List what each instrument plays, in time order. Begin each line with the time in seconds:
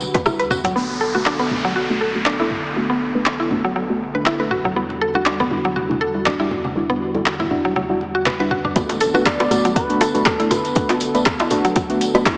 Already playing: analog synth pad D3 G3 F#4, analog synth lead B4
0.01 tambourine, muted conga
0.14 sub bass E1, synth arpeggio sound B4, kick, closed hi-hat, tambourine, djembe slap, djembe tone
0.26 synth arpeggio sound E4, cross-stick, tambourine, muted conga, high conga
0.39 sub bass E2, synth arpeggio sound B4, closed hi-hat, tambourine
0.50 synth arpeggio sound F#4, mid tom, tambourine, muted conga, high conga
0.64 synth arpeggio sound F#3, closed hi-hat, mid tom, tambourine, djembe tone
0.75 sub bass B1, analog synth pad D3 B3 A4, synth stab A3 B3 D4 F#4, synth arpeggio sound B3, downlifter
1.01 synth arpeggio sound A4
1.15 synth stab A3 B3 D4 B4, synth arpeggio sound F#4
1.26 synth arpeggio sound D4, clap
1.39 synth arpeggio sound B3
1.51 synth stab A3 B3 D4 F#4, mid tom
1.65 synth arpeggio sound F#3
1.76 synth arpeggio sound F#4
1.90 synth stab A3 B3 D4 F#4
2.01 synth arpeggio sound A4
2.15 synth stab A3 B3 D4 F#4
2.26 synth arpeggio sound D4, clap
2.40 synth stab A3 B3 D4 A4, synth arpeggio sound E4
2.51 mid tom
2.76 synth stab A3 B3 D4 F#4
2.90 synth arpeggio sound B3
3.15 synth stab A3 B3 D4 B4
3.26 clap
3.40 synth arpeggio sound E4
3.51 synth stab A3 B3 D4 F#4, mid tom
3.65 synth arpeggio sound F#3
3.76 synth arpeggio sound F#3
3.90 synth stab A3 B3 D4 F#4
4.15 synth stab A3 B3 D4 F#4, synth arpeggio sound B4
4.26 synth arpeggio sound E4, clap
4.40 synth stab A3 B3 D4 A4, synth arpeggio sound B4
4.51 synth arpeggio sound F#4, mid tom
4.64 synth arpeggio sound F#3, mid tom
4.76 sub bass E2, analog synth pad G3 F#4, synth stab G3 D4 E4 F#4, synth arpeggio sound B3
4.90 muted conga
5.01 synth arpeggio sound A4
5.14 synth stab G3 D4 E4 A4, synth arpeggio sound F#4, muted conga
5.26 synth arpeggio sound D4, clap
5.40 synth arpeggio sound B3, muted conga, low conga
5.51 synth stab G3 D4 E4 F#4, mid tom
5.65 synth arpeggio sound F#3, muted conga
5.76 synth arpeggio sound F#4, high conga
5.89 synth stab G3 D4 E4 F#4, high conga
6.01 synth arpeggio sound A4, muted conga, high conga
6.14 synth stab G3 D4 E4 F#4
6.26 synth arpeggio sound D4, clap, muted conga, low conga
6.40 synth stab G3 D4 E4 G4, synth arpeggio sound E4
6.51 mid tom, muted conga
6.65 high conga
6.76 synth stab G3 D4 E4 F#4
6.90 synth arpeggio sound B3, muted conga
7.14 synth stab G3 D4 E4 A4, muted conga, low conga
7.26 clap
7.39 synth arpeggio sound E4, muted conga, low conga
7.51 synth stab G3 D4 E4 F#4, mid tom
7.65 synth arpeggio sound F#3, muted conga
7.76 synth arpeggio sound F#3, high conga
7.89 synth stab G3 D4 E4 F#4
8.01 muted conga
8.15 synth arpeggio sound F#4
8.26 synth arpeggio sound B4, clap, muted conga, high conga
8.39 synth stab G3 D4 E4 F#4, synth arpeggio sound B4
8.51 synth arpeggio sound F#4, mid tom, muted conga, high conga
8.65 synth arpeggio sound D4, mid tom
8.75 sub bass B1, analog synth pad D3 B3 A4, synth stab A3 B3 D4 F#4, synth arpeggio sound B3, kick, closed hi-hat, tambourine, impact, djembe tone
8.89 closed hi-hat, tambourine, djembe slap
9.00 synth arpeggio sound A4, open hi-hat, tambourine
9.14 sub bass B1, synth stab A3 B3 D4 B4, synth arpeggio sound F#4, tambourine, djembe tone
9.25 synth arpeggio sound D4, analog synth lead D5, kick, cross-stick, clap, closed hi-hat, tambourine
9.40 synth arpeggio sound B3, closed hi-hat, tambourine, djembe slap
9.51 sub bass B1, synth stab A3 B3 D4 F#4, cross-stick, mid tom, open hi-hat, tambourine
9.65 synth arpeggio sound F#3, closed hi-hat, tambourine, djembe tone
9.75 synth arpeggio sound F#4, analog synth lead B4, kick, closed hi-hat, tambourine
9.89 sub bass B1, synth stab A3 B3 D4 F#4, closed hi-hat, tambourine
10.01 synth arpeggio sound A4, open hi-hat, tambourine, djembe slap, djembe tone
10.14 sub bass B1, synth stab A3 B3 D4 F#4, closed hi-hat, tambourine
10.25 synth arpeggio sound D4, analog synth lead A4, kick, cross-stick, clap, closed hi-hat, tambourine
10.39 sub bass F#1, synth stab A3 B3 D4 A4, synth arpeggio sound E4, closed hi-hat, tambourine
10.51 analog synth lead B4, mid tom, open hi-hat, tambourine, djembe slap, djembe tone
10.65 closed hi-hat, tambourine
10.75 sub bass B1, synth stab A3 B3 D4 F#4, kick, closed hi-hat, tambourine
10.89 synth arpeggio sound B3, clap, closed hi-hat, tambourine, djembe slap, djembe tone
11.00 open hi-hat, tambourine
11.14 sub bass B1, synth stab A3 B3 D4 B4, closed hi-hat, tambourine
11.25 kick, cross-stick, clap, closed hi-hat, tambourine
11.39 synth arpeggio sound E4, closed hi-hat, tambourine, djembe slap, djembe tone
11.50 sub bass B1, synth stab A3 B3 D4 F#4, mid tom, open hi-hat, tambourine
11.65 synth arpeggio sound F#3, closed hi-hat, tambourine
11.75 synth arpeggio sound F#3, kick, closed hi-hat, tambourine, djembe tone
11.90 sub bass B1, synth stab A3 B3 D4 F#4, closed hi-hat, tambourine
12.01 open hi-hat, tambourine
12.14 sub bass B1, synth stab A3 B3 D4 F#4, synth arpeggio sound B4, closed hi-hat, tambourine, djembe slap
12.26 synth arpeggio sound E4, kick, cross-stick, clap, closed hi-hat, tambourine, djembe tone